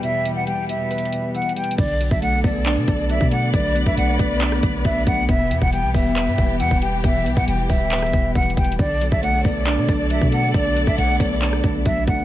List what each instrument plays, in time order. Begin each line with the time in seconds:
Already playing: string section E2 B2 G3, synth keys B2 E3 G3 B3 B4
0.03 synth keys B2, flute E5, closed hi-hat
0.25 synth keys E3, closed hi-hat
0.36 flute F#5
0.47 synth keys G3, flute G5, closed hi-hat
0.68 synth keys B3, flute E5, closed hi-hat
0.91 synth keys B4, closed hi-hat
0.98 closed hi-hat
1.05 closed hi-hat
1.12 synth keys B2, closed hi-hat
1.35 synth keys E3, flute F#5, closed hi-hat
1.42 closed hi-hat
1.49 closed hi-hat
1.56 synth keys G3, flute G5, closed hi-hat
1.64 closed hi-hat
1.71 closed hi-hat
1.78 808-style bass B1, synth keys D3, string section B3 A4 D5, flute D5, kick, closed hi-hat, crash
2.01 synth keys F#3, closed hi-hat
2.11 808-style bass B1, flute E5, kick
2.22 synth keys A3, flute F#5, closed hi-hat
2.44 808-style bass B1, synth keys B3, flute D5, kick, open hi-hat
2.66 synth keys D4, clap, closed hi-hat
2.77 808-style bass B2
2.88 808-style bass B1, synth keys D3, kick, closed hi-hat
3.10 synth keys F#3, flute E5, closed hi-hat
3.21 808-style bass B2, kick
3.31 synth keys A3, flute F#5, closed hi-hat
3.53 808-style bass B1, synth keys D3, string section B4, flute D5, kick, closed hi-hat
3.75 synth keys F#3, closed hi-hat
3.86 808-style bass B1, flute E5, kick
3.97 808-style bass B1, synth keys A3, flute F#5, closed hi-hat
4.19 808-style bass B1, synth keys B3, flute D5, kick, closed hi-hat
4.41 synth keys D4, clap, closed hi-hat
4.52 cross-stick
4.63 808-style bass B1, synth keys D3, kick, closed hi-hat
4.85 808-style bass B1, synth keys F#3, flute E5, kick, closed hi-hat
5.07 808-style bass B1, synth keys A3, flute F#5, kick, closed hi-hat
5.29 808-style bass E1, synth keys B2, string section E3 G4, flute E5, kick, closed hi-hat
5.50 808-style bass E2, synth keys E3, closed hi-hat
5.62 808-style bass E1, flute F#5, kick
5.73 synth keys G3, flute G5, closed hi-hat
5.83 808-style bass B1
5.94 808-style bass E1, synth keys B3, flute E5, kick, open hi-hat
6.16 synth keys B4, clap, closed hi-hat
6.27 808-style bass G2
6.38 808-style bass E1, synth keys B2, kick, closed hi-hat
6.60 808-style bass E2, synth keys E3, flute F#5, closed hi-hat
6.71 808-style bass E1, kick
6.82 synth keys G3, flute G5, closed hi-hat
7.04 808-style bass E1, synth keys B2, flute E5, kick, closed hi-hat
7.26 808-style bass B1, synth keys E3, closed hi-hat
7.37 808-style bass B1, flute F#5, kick
7.48 808-style bass E1, synth keys G3, flute G5, closed hi-hat
7.69 808-style bass D1, synth keys B3, flute E5, kick, open hi-hat
7.92 synth keys B4, clap, closed hi-hat
7.99 cross-stick, closed hi-hat
8.06 closed hi-hat
8.13 808-style bass E1, synth keys B2, kick, closed hi-hat
8.35 808-style bass E1, synth keys E3, flute F#5, kick, closed hi-hat
8.43 closed hi-hat
8.50 closed hi-hat
8.57 808-style bass E1, synth keys G3, flute G5, kick, closed hi-hat, open hi-hat
8.65 closed hi-hat
8.72 closed hi-hat
8.79 808-style bass B1, synth keys D3, string section B3 A4 D5, flute D5, kick, closed hi-hat
9.01 synth keys F#3, closed hi-hat
9.12 808-style bass B1, flute E5, kick
9.23 synth keys A3, flute F#5, closed hi-hat
9.45 808-style bass B1, synth keys B3, flute D5, kick, open hi-hat
9.67 synth keys D4, clap, closed hi-hat
9.78 808-style bass B2
9.88 808-style bass B1, synth keys D3, kick, closed hi-hat
10.10 synth keys F#3, flute E5, closed hi-hat
10.21 808-style bass B2, kick
10.32 synth keys A3, flute F#5, closed hi-hat
10.54 808-style bass B1, synth keys D3, flute D5, kick, closed hi-hat
10.76 synth keys F#3, closed hi-hat
10.87 808-style bass B1, flute E5, kick
10.98 808-style bass B1, synth keys A3, flute F#5, closed hi-hat
11.20 808-style bass B1, synth keys B3, flute D5, kick, closed hi-hat
11.42 synth keys D4, clap, closed hi-hat
11.53 cross-stick
11.63 808-style bass B1, synth keys D3, kick, closed hi-hat
11.85 808-style bass B1, synth keys F#3, flute E5, kick, closed hi-hat
12.07 808-style bass B1, synth keys A3, flute F#5, kick, closed hi-hat